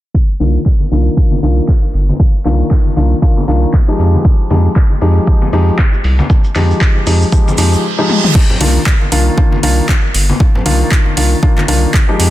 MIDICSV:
0, 0, Header, 1, 5, 480
1, 0, Start_track
1, 0, Key_signature, -3, "minor"
1, 0, Tempo, 512821
1, 136, Time_signature, 4, 2, 24, 8
1, 11514, End_track
2, 0, Start_track
2, 0, Title_t, "Felt piano"
2, 0, Program_c, 0, 0
2, 374, Note_on_c, 0, 51, 70
2, 375, Note_on_c, 0, 58, 67
2, 375, Note_on_c, 0, 62, 68
2, 376, Note_on_c, 0, 65, 80
2, 536, Note_off_c, 0, 51, 0
2, 536, Note_off_c, 0, 58, 0
2, 536, Note_off_c, 0, 62, 0
2, 537, Note_off_c, 0, 65, 0
2, 854, Note_on_c, 0, 51, 81
2, 855, Note_on_c, 0, 58, 74
2, 855, Note_on_c, 0, 62, 69
2, 856, Note_on_c, 0, 65, 86
2, 1071, Note_off_c, 0, 51, 0
2, 1071, Note_off_c, 0, 58, 0
2, 1071, Note_off_c, 0, 62, 0
2, 1071, Note_off_c, 0, 65, 0
2, 1094, Note_on_c, 0, 51, 80
2, 1095, Note_on_c, 0, 58, 72
2, 1095, Note_on_c, 0, 62, 71
2, 1096, Note_on_c, 0, 65, 86
2, 1256, Note_off_c, 0, 51, 0
2, 1256, Note_off_c, 0, 58, 0
2, 1256, Note_off_c, 0, 62, 0
2, 1257, Note_off_c, 0, 65, 0
2, 1334, Note_on_c, 0, 51, 82
2, 1335, Note_on_c, 0, 58, 75
2, 1335, Note_on_c, 0, 62, 79
2, 1336, Note_on_c, 0, 65, 94
2, 1570, Note_off_c, 0, 51, 0
2, 1570, Note_off_c, 0, 58, 0
2, 1570, Note_off_c, 0, 62, 0
2, 1571, Note_off_c, 0, 65, 0
2, 2295, Note_on_c, 0, 51, 88
2, 2295, Note_on_c, 0, 58, 80
2, 2295, Note_on_c, 0, 62, 78
2, 2296, Note_on_c, 0, 65, 97
2, 2751, Note_off_c, 0, 51, 0
2, 2751, Note_off_c, 0, 58, 0
2, 2751, Note_off_c, 0, 62, 0
2, 2751, Note_off_c, 0, 65, 0
2, 2774, Note_on_c, 0, 51, 79
2, 2775, Note_on_c, 0, 58, 71
2, 2775, Note_on_c, 0, 62, 73
2, 2775, Note_on_c, 0, 65, 86
2, 2936, Note_off_c, 0, 51, 0
2, 2936, Note_off_c, 0, 58, 0
2, 2936, Note_off_c, 0, 62, 0
2, 2936, Note_off_c, 0, 65, 0
2, 3014, Note_on_c, 0, 51, 84
2, 3015, Note_on_c, 0, 58, 78
2, 3016, Note_on_c, 0, 62, 76
2, 3016, Note_on_c, 0, 65, 95
2, 3176, Note_off_c, 0, 51, 0
2, 3176, Note_off_c, 0, 58, 0
2, 3176, Note_off_c, 0, 62, 0
2, 3177, Note_off_c, 0, 65, 0
2, 3255, Note_on_c, 0, 51, 85
2, 3255, Note_on_c, 0, 58, 79
2, 3256, Note_on_c, 0, 62, 79
2, 3256, Note_on_c, 0, 65, 95
2, 3490, Note_off_c, 0, 51, 0
2, 3490, Note_off_c, 0, 58, 0
2, 3491, Note_off_c, 0, 62, 0
2, 3491, Note_off_c, 0, 65, 0
2, 3633, Note_on_c, 0, 53, 95
2, 3633, Note_on_c, 0, 56, 85
2, 3634, Note_on_c, 0, 63, 87
2, 3635, Note_on_c, 0, 67, 104
2, 4190, Note_off_c, 0, 53, 0
2, 4191, Note_off_c, 0, 56, 0
2, 4191, Note_off_c, 0, 63, 0
2, 4192, Note_off_c, 0, 67, 0
2, 4215, Note_on_c, 0, 53, 74
2, 4216, Note_on_c, 0, 56, 70
2, 4216, Note_on_c, 0, 63, 71
2, 4216, Note_on_c, 0, 67, 84
2, 4376, Note_off_c, 0, 53, 0
2, 4377, Note_off_c, 0, 56, 0
2, 4377, Note_off_c, 0, 63, 0
2, 4377, Note_off_c, 0, 67, 0
2, 4694, Note_on_c, 0, 53, 80
2, 4695, Note_on_c, 0, 56, 75
2, 4695, Note_on_c, 0, 63, 73
2, 4696, Note_on_c, 0, 67, 90
2, 4911, Note_off_c, 0, 53, 0
2, 4911, Note_off_c, 0, 56, 0
2, 4911, Note_off_c, 0, 63, 0
2, 4911, Note_off_c, 0, 67, 0
2, 4935, Note_on_c, 0, 53, 81
2, 4935, Note_on_c, 0, 56, 73
2, 4936, Note_on_c, 0, 63, 75
2, 4936, Note_on_c, 0, 67, 92
2, 5096, Note_off_c, 0, 53, 0
2, 5096, Note_off_c, 0, 56, 0
2, 5097, Note_off_c, 0, 63, 0
2, 5097, Note_off_c, 0, 67, 0
2, 5174, Note_on_c, 0, 53, 88
2, 5175, Note_on_c, 0, 56, 78
2, 5175, Note_on_c, 0, 63, 80
2, 5176, Note_on_c, 0, 67, 98
2, 5410, Note_off_c, 0, 53, 0
2, 5410, Note_off_c, 0, 56, 0
2, 5410, Note_off_c, 0, 63, 0
2, 5411, Note_off_c, 0, 67, 0
2, 6134, Note_on_c, 0, 53, 88
2, 6135, Note_on_c, 0, 56, 81
2, 6135, Note_on_c, 0, 63, 80
2, 6136, Note_on_c, 0, 67, 101
2, 6591, Note_off_c, 0, 53, 0
2, 6591, Note_off_c, 0, 56, 0
2, 6591, Note_off_c, 0, 63, 0
2, 6591, Note_off_c, 0, 67, 0
2, 6615, Note_on_c, 0, 53, 83
2, 6615, Note_on_c, 0, 56, 76
2, 6616, Note_on_c, 0, 63, 76
2, 6616, Note_on_c, 0, 67, 91
2, 6776, Note_off_c, 0, 53, 0
2, 6776, Note_off_c, 0, 56, 0
2, 6777, Note_off_c, 0, 63, 0
2, 6777, Note_off_c, 0, 67, 0
2, 6855, Note_on_c, 0, 53, 88
2, 6855, Note_on_c, 0, 56, 77
2, 6856, Note_on_c, 0, 63, 79
2, 6856, Note_on_c, 0, 67, 94
2, 7016, Note_off_c, 0, 53, 0
2, 7016, Note_off_c, 0, 56, 0
2, 7017, Note_off_c, 0, 63, 0
2, 7017, Note_off_c, 0, 67, 0
2, 7095, Note_on_c, 0, 53, 90
2, 7095, Note_on_c, 0, 56, 81
2, 7096, Note_on_c, 0, 63, 80
2, 7096, Note_on_c, 0, 67, 98
2, 7330, Note_off_c, 0, 53, 0
2, 7330, Note_off_c, 0, 56, 0
2, 7331, Note_off_c, 0, 63, 0
2, 7331, Note_off_c, 0, 67, 0
2, 7473, Note_on_c, 0, 53, 94
2, 7474, Note_on_c, 0, 56, 89
2, 7474, Note_on_c, 0, 63, 91
2, 7475, Note_on_c, 0, 67, 102
2, 7803, Note_off_c, 0, 53, 0
2, 7803, Note_off_c, 0, 56, 0
2, 7803, Note_off_c, 0, 63, 0
2, 7804, Note_off_c, 0, 67, 0
2, 8055, Note_on_c, 0, 51, 75
2, 8055, Note_on_c, 0, 58, 71
2, 8056, Note_on_c, 0, 62, 72
2, 8056, Note_on_c, 0, 65, 84
2, 8216, Note_off_c, 0, 51, 0
2, 8216, Note_off_c, 0, 58, 0
2, 8217, Note_off_c, 0, 62, 0
2, 8217, Note_off_c, 0, 65, 0
2, 8534, Note_on_c, 0, 51, 83
2, 8535, Note_on_c, 0, 58, 76
2, 8535, Note_on_c, 0, 62, 74
2, 8536, Note_on_c, 0, 65, 95
2, 8751, Note_off_c, 0, 51, 0
2, 8751, Note_off_c, 0, 58, 0
2, 8751, Note_off_c, 0, 62, 0
2, 8751, Note_off_c, 0, 65, 0
2, 8774, Note_on_c, 0, 51, 83
2, 8774, Note_on_c, 0, 58, 75
2, 8775, Note_on_c, 0, 62, 74
2, 8775, Note_on_c, 0, 65, 87
2, 8936, Note_off_c, 0, 51, 0
2, 8936, Note_off_c, 0, 58, 0
2, 8936, Note_off_c, 0, 62, 0
2, 8936, Note_off_c, 0, 65, 0
2, 9014, Note_on_c, 0, 51, 91
2, 9015, Note_on_c, 0, 58, 79
2, 9015, Note_on_c, 0, 62, 80
2, 9016, Note_on_c, 0, 65, 97
2, 9250, Note_off_c, 0, 51, 0
2, 9250, Note_off_c, 0, 58, 0
2, 9250, Note_off_c, 0, 62, 0
2, 9251, Note_off_c, 0, 65, 0
2, 9974, Note_on_c, 0, 51, 92
2, 9975, Note_on_c, 0, 58, 82
2, 9976, Note_on_c, 0, 62, 82
2, 9976, Note_on_c, 0, 65, 101
2, 10431, Note_off_c, 0, 51, 0
2, 10431, Note_off_c, 0, 58, 0
2, 10431, Note_off_c, 0, 62, 0
2, 10432, Note_off_c, 0, 65, 0
2, 10455, Note_on_c, 0, 51, 81
2, 10456, Note_on_c, 0, 58, 75
2, 10456, Note_on_c, 0, 62, 76
2, 10457, Note_on_c, 0, 65, 92
2, 10616, Note_off_c, 0, 51, 0
2, 10616, Note_off_c, 0, 58, 0
2, 10617, Note_off_c, 0, 62, 0
2, 10617, Note_off_c, 0, 65, 0
2, 10695, Note_on_c, 0, 51, 83
2, 10695, Note_on_c, 0, 58, 82
2, 10696, Note_on_c, 0, 62, 80
2, 10697, Note_on_c, 0, 65, 98
2, 10856, Note_off_c, 0, 51, 0
2, 10856, Note_off_c, 0, 58, 0
2, 10856, Note_off_c, 0, 62, 0
2, 10857, Note_off_c, 0, 65, 0
2, 10934, Note_on_c, 0, 51, 87
2, 10935, Note_on_c, 0, 58, 81
2, 10935, Note_on_c, 0, 62, 81
2, 10936, Note_on_c, 0, 65, 97
2, 11170, Note_off_c, 0, 51, 0
2, 11170, Note_off_c, 0, 58, 0
2, 11170, Note_off_c, 0, 62, 0
2, 11171, Note_off_c, 0, 65, 0
2, 11313, Note_on_c, 0, 53, 100
2, 11315, Note_on_c, 0, 56, 87
2, 11315, Note_on_c, 0, 63, 90
2, 11317, Note_on_c, 0, 67, 107
2, 11514, Note_off_c, 0, 53, 0
2, 11514, Note_off_c, 0, 56, 0
2, 11514, Note_off_c, 0, 63, 0
2, 11514, Note_off_c, 0, 67, 0
2, 11514, End_track
3, 0, Start_track
3, 0, Title_t, "Analog synth bass"
3, 0, Program_c, 1, 38
3, 376, Note_on_c, 1, 36, 93
3, 542, Note_off_c, 1, 36, 0
3, 856, Note_on_c, 1, 36, 88
3, 1022, Note_off_c, 1, 36, 0
3, 1336, Note_on_c, 1, 36, 80
3, 1502, Note_off_c, 1, 36, 0
3, 1816, Note_on_c, 1, 31, 94
3, 1982, Note_off_c, 1, 31, 0
3, 2296, Note_on_c, 1, 36, 92
3, 2462, Note_off_c, 1, 36, 0
3, 2776, Note_on_c, 1, 36, 89
3, 2942, Note_off_c, 1, 36, 0
3, 3256, Note_on_c, 1, 36, 84
3, 3422, Note_off_c, 1, 36, 0
3, 3736, Note_on_c, 1, 41, 98
3, 3902, Note_off_c, 1, 41, 0
3, 4216, Note_on_c, 1, 41, 93
3, 4382, Note_off_c, 1, 41, 0
3, 4696, Note_on_c, 1, 41, 93
3, 4862, Note_off_c, 1, 41, 0
3, 5175, Note_on_c, 1, 41, 84
3, 5341, Note_off_c, 1, 41, 0
3, 5655, Note_on_c, 1, 36, 98
3, 5821, Note_off_c, 1, 36, 0
3, 6135, Note_on_c, 1, 41, 99
3, 6302, Note_off_c, 1, 41, 0
3, 6615, Note_on_c, 1, 41, 96
3, 6781, Note_off_c, 1, 41, 0
3, 7095, Note_on_c, 1, 41, 95
3, 7261, Note_off_c, 1, 41, 0
3, 8055, Note_on_c, 1, 36, 98
3, 8221, Note_off_c, 1, 36, 0
3, 8536, Note_on_c, 1, 36, 94
3, 8702, Note_off_c, 1, 36, 0
3, 9016, Note_on_c, 1, 36, 86
3, 9182, Note_off_c, 1, 36, 0
3, 9496, Note_on_c, 1, 31, 99
3, 9662, Note_off_c, 1, 31, 0
3, 9976, Note_on_c, 1, 36, 97
3, 10142, Note_off_c, 1, 36, 0
3, 10456, Note_on_c, 1, 36, 93
3, 10622, Note_off_c, 1, 36, 0
3, 10936, Note_on_c, 1, 36, 83
3, 11102, Note_off_c, 1, 36, 0
3, 11415, Note_on_c, 1, 41, 100
3, 11514, Note_off_c, 1, 41, 0
3, 11514, End_track
4, 0, Start_track
4, 0, Title_t, "Reverse cymbal"
4, 0, Program_c, 2, 119
4, 6856, Note_on_c, 2, 60, 71
4, 7815, Note_off_c, 2, 60, 0
4, 11514, End_track
5, 0, Start_track
5, 0, Title_t, "Drums"
5, 135, Note_on_c, 9, 36, 108
5, 229, Note_off_c, 9, 36, 0
5, 374, Note_on_c, 9, 63, 86
5, 375, Note_on_c, 9, 46, 92
5, 468, Note_off_c, 9, 63, 0
5, 469, Note_off_c, 9, 46, 0
5, 616, Note_on_c, 9, 36, 103
5, 618, Note_on_c, 9, 39, 111
5, 709, Note_off_c, 9, 36, 0
5, 712, Note_off_c, 9, 39, 0
5, 748, Note_on_c, 9, 63, 57
5, 842, Note_off_c, 9, 63, 0
5, 856, Note_on_c, 9, 46, 96
5, 949, Note_off_c, 9, 46, 0
5, 1096, Note_on_c, 9, 36, 108
5, 1189, Note_off_c, 9, 36, 0
5, 1228, Note_on_c, 9, 63, 88
5, 1322, Note_off_c, 9, 63, 0
5, 1336, Note_on_c, 9, 46, 97
5, 1429, Note_off_c, 9, 46, 0
5, 1576, Note_on_c, 9, 36, 107
5, 1578, Note_on_c, 9, 39, 106
5, 1578, Note_on_c, 9, 63, 57
5, 1669, Note_off_c, 9, 36, 0
5, 1671, Note_off_c, 9, 63, 0
5, 1672, Note_off_c, 9, 39, 0
5, 1816, Note_on_c, 9, 46, 92
5, 1909, Note_off_c, 9, 46, 0
5, 1958, Note_on_c, 9, 63, 77
5, 2052, Note_off_c, 9, 63, 0
5, 2056, Note_on_c, 9, 36, 112
5, 2149, Note_off_c, 9, 36, 0
5, 2295, Note_on_c, 9, 63, 87
5, 2296, Note_on_c, 9, 46, 97
5, 2299, Note_on_c, 9, 39, 35
5, 2388, Note_off_c, 9, 63, 0
5, 2389, Note_off_c, 9, 46, 0
5, 2392, Note_off_c, 9, 39, 0
5, 2536, Note_on_c, 9, 36, 112
5, 2538, Note_on_c, 9, 39, 109
5, 2629, Note_off_c, 9, 36, 0
5, 2632, Note_off_c, 9, 39, 0
5, 2676, Note_on_c, 9, 63, 59
5, 2769, Note_off_c, 9, 63, 0
5, 2775, Note_on_c, 9, 46, 100
5, 2869, Note_off_c, 9, 46, 0
5, 3016, Note_on_c, 9, 36, 111
5, 3109, Note_off_c, 9, 36, 0
5, 3157, Note_on_c, 9, 63, 88
5, 3250, Note_off_c, 9, 63, 0
5, 3256, Note_on_c, 9, 46, 102
5, 3349, Note_off_c, 9, 46, 0
5, 3492, Note_on_c, 9, 63, 57
5, 3496, Note_on_c, 9, 36, 113
5, 3499, Note_on_c, 9, 39, 107
5, 3586, Note_off_c, 9, 63, 0
5, 3589, Note_off_c, 9, 36, 0
5, 3592, Note_off_c, 9, 39, 0
5, 3736, Note_on_c, 9, 46, 96
5, 3829, Note_off_c, 9, 46, 0
5, 3880, Note_on_c, 9, 63, 79
5, 3973, Note_on_c, 9, 70, 50
5, 3974, Note_off_c, 9, 63, 0
5, 3976, Note_on_c, 9, 36, 113
5, 4067, Note_off_c, 9, 70, 0
5, 4069, Note_off_c, 9, 36, 0
5, 4214, Note_on_c, 9, 70, 88
5, 4216, Note_on_c, 9, 46, 100
5, 4220, Note_on_c, 9, 63, 94
5, 4308, Note_off_c, 9, 70, 0
5, 4309, Note_off_c, 9, 46, 0
5, 4314, Note_off_c, 9, 63, 0
5, 4352, Note_on_c, 9, 70, 37
5, 4446, Note_off_c, 9, 70, 0
5, 4449, Note_on_c, 9, 70, 47
5, 4456, Note_on_c, 9, 36, 116
5, 4458, Note_on_c, 9, 39, 110
5, 4542, Note_off_c, 9, 70, 0
5, 4549, Note_off_c, 9, 36, 0
5, 4552, Note_off_c, 9, 39, 0
5, 4596, Note_on_c, 9, 63, 58
5, 4687, Note_on_c, 9, 70, 85
5, 4690, Note_off_c, 9, 63, 0
5, 4696, Note_on_c, 9, 46, 101
5, 4781, Note_off_c, 9, 70, 0
5, 4789, Note_off_c, 9, 46, 0
5, 4838, Note_on_c, 9, 70, 41
5, 4929, Note_off_c, 9, 70, 0
5, 4929, Note_on_c, 9, 70, 54
5, 4936, Note_on_c, 9, 36, 121
5, 5022, Note_off_c, 9, 70, 0
5, 5029, Note_off_c, 9, 36, 0
5, 5070, Note_on_c, 9, 70, 40
5, 5072, Note_on_c, 9, 63, 86
5, 5164, Note_off_c, 9, 70, 0
5, 5165, Note_off_c, 9, 63, 0
5, 5174, Note_on_c, 9, 70, 97
5, 5176, Note_on_c, 9, 46, 102
5, 5267, Note_off_c, 9, 70, 0
5, 5269, Note_off_c, 9, 46, 0
5, 5316, Note_on_c, 9, 70, 40
5, 5410, Note_off_c, 9, 70, 0
5, 5411, Note_on_c, 9, 63, 60
5, 5416, Note_on_c, 9, 36, 116
5, 5418, Note_on_c, 9, 39, 107
5, 5420, Note_on_c, 9, 70, 55
5, 5504, Note_off_c, 9, 63, 0
5, 5509, Note_off_c, 9, 36, 0
5, 5512, Note_off_c, 9, 39, 0
5, 5513, Note_off_c, 9, 70, 0
5, 5553, Note_on_c, 9, 70, 36
5, 5647, Note_off_c, 9, 70, 0
5, 5654, Note_on_c, 9, 70, 81
5, 5655, Note_on_c, 9, 46, 98
5, 5748, Note_off_c, 9, 70, 0
5, 5749, Note_off_c, 9, 46, 0
5, 5792, Note_on_c, 9, 63, 95
5, 5794, Note_on_c, 9, 70, 39
5, 5886, Note_off_c, 9, 63, 0
5, 5888, Note_off_c, 9, 70, 0
5, 5895, Note_on_c, 9, 36, 111
5, 5895, Note_on_c, 9, 70, 45
5, 5989, Note_off_c, 9, 36, 0
5, 5989, Note_off_c, 9, 70, 0
5, 6028, Note_on_c, 9, 70, 32
5, 6122, Note_off_c, 9, 70, 0
5, 6132, Note_on_c, 9, 70, 91
5, 6136, Note_on_c, 9, 46, 100
5, 6137, Note_on_c, 9, 63, 89
5, 6138, Note_on_c, 9, 39, 35
5, 6226, Note_off_c, 9, 70, 0
5, 6229, Note_off_c, 9, 46, 0
5, 6230, Note_off_c, 9, 63, 0
5, 6232, Note_off_c, 9, 39, 0
5, 6276, Note_on_c, 9, 70, 40
5, 6369, Note_off_c, 9, 70, 0
5, 6373, Note_on_c, 9, 70, 46
5, 6375, Note_on_c, 9, 36, 116
5, 6378, Note_on_c, 9, 39, 111
5, 6466, Note_off_c, 9, 70, 0
5, 6469, Note_off_c, 9, 36, 0
5, 6472, Note_off_c, 9, 39, 0
5, 6510, Note_on_c, 9, 63, 61
5, 6604, Note_off_c, 9, 63, 0
5, 6615, Note_on_c, 9, 46, 102
5, 6616, Note_on_c, 9, 70, 87
5, 6709, Note_off_c, 9, 46, 0
5, 6710, Note_off_c, 9, 70, 0
5, 6756, Note_on_c, 9, 70, 35
5, 6849, Note_off_c, 9, 70, 0
5, 6855, Note_on_c, 9, 36, 121
5, 6857, Note_on_c, 9, 70, 54
5, 6949, Note_off_c, 9, 36, 0
5, 6950, Note_off_c, 9, 70, 0
5, 6999, Note_on_c, 9, 63, 94
5, 7002, Note_on_c, 9, 70, 39
5, 7092, Note_off_c, 9, 70, 0
5, 7092, Note_on_c, 9, 70, 92
5, 7093, Note_off_c, 9, 63, 0
5, 7095, Note_on_c, 9, 46, 105
5, 7186, Note_off_c, 9, 70, 0
5, 7189, Note_off_c, 9, 46, 0
5, 7238, Note_on_c, 9, 70, 41
5, 7332, Note_off_c, 9, 70, 0
5, 7576, Note_on_c, 9, 48, 56
5, 7669, Note_off_c, 9, 48, 0
5, 7714, Note_on_c, 9, 47, 70
5, 7808, Note_off_c, 9, 47, 0
5, 7815, Note_on_c, 9, 49, 90
5, 7816, Note_on_c, 9, 36, 114
5, 7909, Note_off_c, 9, 36, 0
5, 7909, Note_off_c, 9, 49, 0
5, 7956, Note_on_c, 9, 64, 91
5, 8050, Note_off_c, 9, 64, 0
5, 8055, Note_on_c, 9, 46, 99
5, 8058, Note_on_c, 9, 63, 91
5, 8149, Note_off_c, 9, 46, 0
5, 8152, Note_off_c, 9, 63, 0
5, 8296, Note_on_c, 9, 36, 114
5, 8298, Note_on_c, 9, 39, 114
5, 8389, Note_off_c, 9, 36, 0
5, 8392, Note_off_c, 9, 39, 0
5, 8437, Note_on_c, 9, 63, 62
5, 8530, Note_off_c, 9, 63, 0
5, 8536, Note_on_c, 9, 46, 101
5, 8629, Note_off_c, 9, 46, 0
5, 8776, Note_on_c, 9, 36, 116
5, 8870, Note_off_c, 9, 36, 0
5, 8914, Note_on_c, 9, 63, 83
5, 9008, Note_off_c, 9, 63, 0
5, 9015, Note_on_c, 9, 46, 102
5, 9109, Note_off_c, 9, 46, 0
5, 9253, Note_on_c, 9, 63, 64
5, 9256, Note_on_c, 9, 36, 113
5, 9258, Note_on_c, 9, 39, 110
5, 9347, Note_off_c, 9, 63, 0
5, 9350, Note_off_c, 9, 36, 0
5, 9352, Note_off_c, 9, 39, 0
5, 9496, Note_on_c, 9, 46, 101
5, 9589, Note_off_c, 9, 46, 0
5, 9635, Note_on_c, 9, 63, 89
5, 9729, Note_off_c, 9, 63, 0
5, 9736, Note_on_c, 9, 36, 117
5, 9830, Note_off_c, 9, 36, 0
5, 9878, Note_on_c, 9, 64, 93
5, 9972, Note_off_c, 9, 64, 0
5, 9973, Note_on_c, 9, 63, 83
5, 9976, Note_on_c, 9, 46, 104
5, 10067, Note_off_c, 9, 63, 0
5, 10069, Note_off_c, 9, 46, 0
5, 10216, Note_on_c, 9, 36, 113
5, 10218, Note_on_c, 9, 39, 117
5, 10310, Note_off_c, 9, 36, 0
5, 10312, Note_off_c, 9, 39, 0
5, 10352, Note_on_c, 9, 63, 58
5, 10446, Note_off_c, 9, 63, 0
5, 10455, Note_on_c, 9, 46, 108
5, 10549, Note_off_c, 9, 46, 0
5, 10696, Note_on_c, 9, 36, 119
5, 10790, Note_off_c, 9, 36, 0
5, 10832, Note_on_c, 9, 63, 102
5, 10837, Note_on_c, 9, 39, 36
5, 10926, Note_off_c, 9, 63, 0
5, 10931, Note_off_c, 9, 39, 0
5, 10935, Note_on_c, 9, 46, 106
5, 11029, Note_off_c, 9, 46, 0
5, 11176, Note_on_c, 9, 36, 121
5, 11179, Note_on_c, 9, 39, 111
5, 11183, Note_on_c, 9, 63, 68
5, 11270, Note_off_c, 9, 36, 0
5, 11272, Note_off_c, 9, 39, 0
5, 11277, Note_off_c, 9, 63, 0
5, 11416, Note_on_c, 9, 46, 104
5, 11509, Note_off_c, 9, 46, 0
5, 11514, End_track
0, 0, End_of_file